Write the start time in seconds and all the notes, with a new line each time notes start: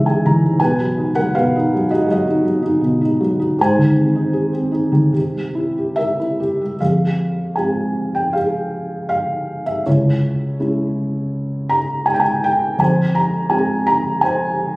Already playing: C#2 G#2 C#3 E3 G#3 C#5 D#5 E5 G#5 A#5
0.06 C#3 G#5
0.26 E3 A#5
0.44 G#2
0.60 B2 B4 G#5
0.80 F#3
0.98 D#4
1.15 F#3 A#4 F#5
1.35 B2 B4 F5
1.56 D#4
1.74 F#3
1.90 D#4 F#4 D#5
2.09 F#3 F#4 D#5
2.28 D#4
2.45 F#3
2.62 D#4
2.81 B2
3.01 D#4
3.21 F#3
3.39 D#4
3.59 G#2 C5 G#5
3.78 D#3
3.96 C4
4.16 D#4
4.33 G#4
4.53 C4
4.72 D#4
4.92 D#3
5.13 C3
5.34 G3
5.55 E4
5.78 G4
5.96 A#4 E5
6.20 E4
6.40 G4
6.62 G3
6.80 F2 G#4 F5
7.56 G#3 C4 F4 G#5
8.15 G5
8.33 G#4 F5
9.09 F5
9.66 E5
9.86 C#2 E4 C#5
10.60 G#3 C#4 E4
11.70 A#5
12.06 G#5
12.14 G5
12.20 G#5
12.44 G5
12.78 F2 G#5
12.83 C5
13.15 A#5
13.50 G#3 C4 F4 G#5
13.87 A#5
14.21 C5 G#5